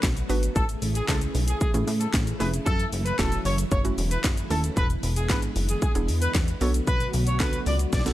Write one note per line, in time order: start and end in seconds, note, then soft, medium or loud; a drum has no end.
0.00 0.23 B1 loud
0.00 0.52 D3 medium
0.00 0.53 F#3 medium
0.00 4.73 A3 medium
0.00 0.12 B3 medium
0.00 0.53 B3 medium
0.00 0.12 D4 medium
0.00 0.12 F#4 medium
0.00 0.54 F#4 medium
0.00 0.12 A4 medium
0.00 kick loud
0.00 snare loud
0.00 clap loud
0.00 shaker loud
0.17 closed hi-hat medium
0.17 shaker medium
0.29 0.49 G#1 medium
0.29 0.56 B3 medium
0.29 0.56 D4 medium
0.29 0.56 F#4 medium
0.29 0.56 B4 loud
0.29 open hi-hat medium
0.29 shaker medium
0.43 closed hi-hat medium
0.43 shaker medium
0.56 0.76 A1 loud
0.56 4.73 C#3 medium
0.56 4.73 E3 medium
0.56 6.57 E4 medium
0.56 2.64 G#4 medium
0.56 0.66 A4 loud
0.56 kick loud
0.56 shaker medium
0.69 closed hi-hat soft
0.69 shaker soft
0.82 1.02 A1 medium
0.82 open hi-hat medium
0.82 shaker medium
0.95 1.05 G#4 medium
0.95 closed hi-hat medium
0.95 shaker medium
1.08 1.28 C#2 loud
1.08 1.56 A3 medium
1.08 1.56 C#4 medium
1.08 1.56 E4 medium
1.08 1.57 G#4 medium
1.08 1.18 A4 medium
1.08 kick loud
1.08 snare loud
1.08 clap loud
1.08 shaker medium
1.21 closed hi-hat medium
1.21 shaker medium
1.35 1.55 B1 medium
1.35 open hi-hat medium
1.35 shaker medium
1.48 1.58 G#4 medium
1.48 closed hi-hat medium
1.48 shaker medium
1.61 1.71 G#4 medium
1.61 kick loud
1.61 shaker medium
1.74 1.84 A1 loud
1.74 2.22 A3 medium
1.74 2.22 C#4 medium
1.74 2.22 E4 medium
1.74 2.22 G#4 medium
1.74 closed hi-hat medium
1.74 shaker medium
1.87 2.07 A2 loud
1.87 open hi-hat medium
1.87 shaker medium
2.00 2.10 A4 medium
2.00 closed hi-hat medium
2.00 shaker medium
2.14 2.33 A1 loud
2.14 kick loud
2.14 snare loud
2.14 clap loud
2.14 shaker loud
2.27 closed hi-hat medium
2.27 shaker medium
2.40 2.60 F1 medium
2.40 2.66 A3 medium
2.40 2.66 C#4 medium
2.40 2.66 E4 medium
2.40 2.66 G#4 medium
2.40 2.50 B4 medium
2.40 open hi-hat medium
2.40 shaker medium
2.54 closed hi-hat medium
2.54 shaker medium
2.66 2.86 F#1 loud
2.66 4.75 F#3 medium
2.66 2.86 A4 loud
2.66 kick loud
2.66 shaker medium
2.80 closed hi-hat medium
2.80 shaker soft
2.93 3.12 F#1 loud
2.93 open hi-hat medium
2.93 shaker medium
3.06 3.16 B4 medium
3.06 closed hi-hat medium
3.06 shaker medium
3.19 3.39 E1 loud
3.19 3.67 A3 medium
3.19 3.67 C#4 medium
3.19 3.67 E4 medium
3.19 3.67 F#4 medium
3.19 3.39 A4 loud
3.19 kick loud
3.19 snare medium
3.19 clap loud
3.19 shaker medium
3.32 closed hi-hat medium
3.32 shaker medium
3.45 3.65 F#1 loud
3.45 3.55 C#5 medium
3.45 open hi-hat medium
3.45 shaker medium
3.58 closed hi-hat medium
3.58 shaker medium
3.71 3.91 F#1 loud
3.71 3.82 C#5 medium
3.71 kick loud
3.71 shaker medium
3.84 4.33 A3 medium
3.84 4.33 C#4 medium
3.84 4.33 E4 medium
3.84 4.33 F#4 medium
3.84 closed hi-hat medium
3.84 shaker medium
3.98 4.18 E1 loud
3.98 open hi-hat medium
3.98 shaker medium
4.11 4.21 B4 medium
4.11 closed hi-hat medium
4.11 shaker medium
4.24 4.44 F#1 medium
4.24 kick loud
4.24 snare loud
4.24 clap loud
4.24 shaker loud
4.37 closed hi-hat medium
4.37 shaker medium
4.50 4.70 D#1 medium
4.50 4.77 A3 medium
4.50 4.77 C#4 medium
4.50 4.77 E4 medium
4.50 4.61 A4 medium
4.50 4.77 A4 medium
4.50 open hi-hat medium
4.50 shaker medium
4.64 closed hi-hat medium
4.64 shaker medium
4.77 4.97 E1 loud
4.77 8.13 D3 medium
4.77 6.59 E3 medium
4.77 6.59 G#3 medium
4.77 8.13 B3 medium
4.77 4.87 B4 loud
4.77 kick loud
4.77 shaker medium
4.90 closed hi-hat soft
4.90 shaker medium
5.03 5.31 E1 medium
5.03 open hi-hat medium
5.03 shaker medium
5.16 5.27 G#4 medium
5.16 closed hi-hat medium
5.16 shaker medium
5.29 5.49 G#1 loud
5.29 5.77 B3 medium
5.29 5.77 D4 medium
5.29 5.78 E4 medium
5.29 5.78 G#4 medium
5.29 5.40 B4 medium
5.29 kick loud
5.29 snare loud
5.29 clap loud
5.29 shaker medium
5.42 closed hi-hat medium
5.42 shaker medium
5.56 5.76 F#1 medium
5.56 open hi-hat medium
5.56 shaker medium
5.69 5.79 G#4 medium
5.69 closed hi-hat medium
5.69 shaker medium
5.82 5.92 G#4 medium
5.82 kick loud
5.82 shaker medium
5.95 6.10 E1 loud
5.95 6.43 B3 medium
5.95 6.43 D4 medium
5.95 6.43 E4 medium
5.95 6.43 G#4 medium
5.95 closed hi-hat medium
5.95 shaker medium
6.08 6.28 E2 loud
6.08 open hi-hat medium
6.08 shaker medium
6.22 6.32 B4 medium
6.22 closed hi-hat medium
6.22 shaker medium
6.35 6.55 E1 loud
6.35 kick loud
6.35 snare loud
6.35 clap loud
6.35 shaker loud
6.48 closed hi-hat medium
6.48 shaker medium
6.61 6.81 B1 loud
6.61 8.13 F#3 medium
6.61 8.13 A3 medium
6.61 7.24 B3 medium
6.61 7.24 D4 medium
6.61 7.24 F#4 medium
6.61 8.13 F#4 medium
6.61 7.24 A4 medium
6.61 6.71 C#5 medium
6.61 open hi-hat medium
6.61 shaker medium
6.74 closed hi-hat medium
6.74 shaker medium
6.87 7.07 B1 loud
6.87 7.08 B4 loud
6.87 kick loud
6.87 shaker medium
7.00 closed hi-hat medium
7.00 shaker medium
7.14 7.42 B1 loud
7.14 open hi-hat medium
7.14 shaker medium
7.27 7.37 C#5 medium
7.27 closed hi-hat medium
7.27 shaker medium
7.40 7.60 C#2 loud
7.40 7.88 B3 medium
7.40 7.88 D4 medium
7.40 7.88 F#4 medium
7.40 7.88 A4 medium
7.40 7.60 B4 medium
7.40 kick loud
7.40 snare medium
7.40 clap loud
7.40 shaker medium
7.53 closed hi-hat medium
7.53 shaker medium
7.66 7.86 C#2 loud
7.66 7.77 D5 medium
7.66 open hi-hat medium
7.66 shaker medium
7.79 closed hi-hat medium
7.79 shaker medium
7.93 8.12 B1 loud
7.93 8.03 D5 medium
7.93 kick loud
7.93 snare medium
7.93 shaker medium
7.99 snare medium
8.06 8.13 B3 medium
8.06 8.13 D4 medium
8.06 8.13 F#4 medium
8.06 8.13 A4 medium
8.06 snare medium
8.06 closed hi-hat medium
8.06 shaker medium